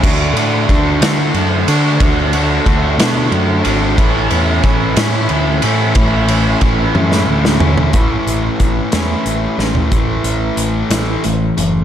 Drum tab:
CC |x-----------|------------|------------|------------|
RD |--x-x-x-x-x-|x-x-x-x-x-x-|x-x-x-x-x-x-|x-x-x-------|
HH |------------|------------|------------|------------|
SD |------o-----|------o-----|------o-----|-------o-o--|
T1 |------------|------------|------------|------o-----|
FT |------------|------------|------------|----------oo|
BD |o---o-------|o---o-------|o---o-------|o---o-------|

CC |------------|------------|
RD |------------|------------|
HH |x-x-x-x-x---|x-x-x-x-x-x-|
SD |------o---o-|------o-----|
T1 |------------|------------|
FT |-----------o|------------|
BD |o---o-------|o-----------|